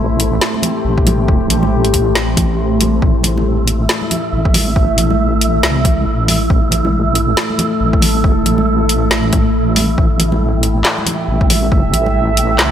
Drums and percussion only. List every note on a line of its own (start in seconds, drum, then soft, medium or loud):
0.20 closed hi-hat medium
0.41 snare loud
0.54 high conga medium
0.63 closed hi-hat medium
0.63 low conga medium
0.98 kick loud
1.07 closed hi-hat medium
1.07 high conga medium
1.07 low conga medium
1.28 kick loud
1.50 closed hi-hat medium
1.50 low conga medium
1.63 high conga medium
1.85 closed hi-hat soft
1.94 kick medium
1.94 closed hi-hat medium
2.15 snare loud
2.29 high conga medium
2.37 kick loud
2.37 closed hi-hat medium
2.37 low conga loud
2.81 closed hi-hat medium
2.81 high conga medium
2.81 low conga loud
3.02 kick loud
3.23 closed hi-hat medium
3.23 low conga loud
3.38 high conga medium
3.68 closed hi-hat medium
3.89 snare loud
4.02 high conga medium
4.11 closed hi-hat medium
4.11 low conga medium
4.45 kick loud
4.54 open hi-hat medium
4.54 high conga medium
4.54 low conga medium
4.76 kick loud
4.98 closed hi-hat medium
4.98 low conga medium
5.11 high conga medium
5.41 closed hi-hat medium
5.63 snare loud
5.76 high conga medium
5.85 kick loud
5.85 closed hi-hat medium
5.85 low conga medium
6.28 open hi-hat medium
6.28 high conga medium
6.28 low conga medium
6.50 kick loud
6.71 closed hi-hat medium
6.71 low conga loud
6.85 high conga medium
7.15 closed hi-hat medium
7.37 snare loud
7.50 high conga medium
7.59 closed hi-hat medium
7.59 low conga loud
7.93 kick loud
8.02 open hi-hat medium
8.02 high conga medium
8.02 low conga medium
8.24 kick loud
8.46 closed hi-hat medium
8.46 low conga medium
8.58 high conga medium
8.89 closed hi-hat medium
9.11 snare loud
9.23 high conga medium
9.33 kick loud
9.33 closed hi-hat medium
9.33 low conga medium
9.76 open hi-hat medium
9.76 high conga medium
9.76 low conga medium
9.98 kick loud
10.19 closed hi-hat medium
10.19 low conga medium
10.32 high conga medium
10.63 closed hi-hat medium
10.85 snare loud
10.85 clap medium
10.98 high conga medium
11.06 closed hi-hat medium
11.06 low conga medium
11.41 kick loud
11.50 open hi-hat medium
11.50 high conga medium
11.50 low conga medium
11.72 kick loud
11.93 closed hi-hat medium
11.93 low conga medium
12.06 high conga medium
12.37 closed hi-hat medium
12.59 snare loud
12.59 clap medium